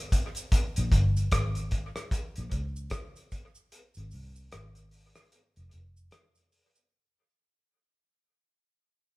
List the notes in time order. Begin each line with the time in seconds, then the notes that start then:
0.12 kick, closed hi-hat, cabasa
0.35 closed hi-hat, cabasa
0.52 kick, closed hi-hat, cabasa
0.76 A#1, closed hi-hat, cabasa
0.92 G1, kick, closed hi-hat, cabasa
1.17 closed hi-hat, cabasa
1.32 G#1, kick, cross-stick, closed hi-hat, cabasa
1.55 closed hi-hat, cabasa
1.71 kick, closed hi-hat, cabasa
1.96 cross-stick, closed hi-hat, cabasa
2.11 kick, closed hi-hat, cabasa
2.36 A#1, closed hi-hat, cabasa
2.51 C#2, kick, closed hi-hat, cabasa
2.76 cabasa
2.90 kick, cross-stick, closed hi-hat, cabasa
3.16 closed hi-hat, cabasa
3.32 kick, closed hi-hat, cabasa
3.55 cabasa
3.72 closed hi-hat, cabasa
3.94 G#1, closed hi-hat, cabasa
4.11 C2, open hi-hat, cabasa
4.36 cabasa
4.52 G#1, cross-stick, closed hi-hat, cabasa
4.75 closed hi-hat, cabasa
4.91 open hi-hat, cabasa
5.16 cross-stick, cabasa
5.32 closed hi-hat, cabasa
5.56 F1, closed hi-hat, cabasa
5.71 F1, closed hi-hat, cabasa
5.97 cabasa
6.11 cross-stick, closed hi-hat, cabasa
6.35 closed hi-hat, cabasa
6.52 open hi-hat, cabasa
6.75 closed hi-hat, cabasa